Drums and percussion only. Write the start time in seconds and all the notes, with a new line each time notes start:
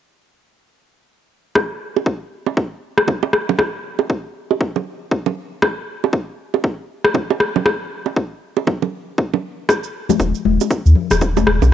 1.55 kick, cross-stick
1.96 high bongo
2.06 kick
2.46 high bongo
2.57 kick
2.98 cross-stick
3.08 kick, low bongo
3.23 high bongo
3.33 cross-stick
3.49 low bongo
3.59 kick, cross-stick
3.99 high bongo
4.10 kick
4.51 high bongo
4.61 kick
4.76 low bongo
5.11 kick
5.26 low bongo
5.62 kick, cross-stick
6.04 high bongo
6.13 kick
6.54 high bongo
6.64 kick
7.04 cross-stick
7.14 kick, low bongo
7.30 high bongo
7.40 cross-stick
7.56 low bongo
7.66 kick, cross-stick
8.06 high bongo
8.16 kick
8.57 high bongo
8.67 kick, low bongo
8.82 low bongo
9.18 kick
9.34 low bongo
9.69 kick, cross-stick, cabasa
9.84 cabasa
10.09 high bongo, high conga, low conga, cabasa
10.20 kick, cabasa
10.35 cabasa
10.45 high conga
10.61 high bongo, cabasa
10.71 kick, cabasa
10.86 cabasa
10.95 low conga
11.11 cross-stick, low conga, cabasa
11.21 kick, low bongo, cabasa
11.37 high bongo, high conga, cabasa
11.47 cross-stick
11.62 low bongo, high conga, cabasa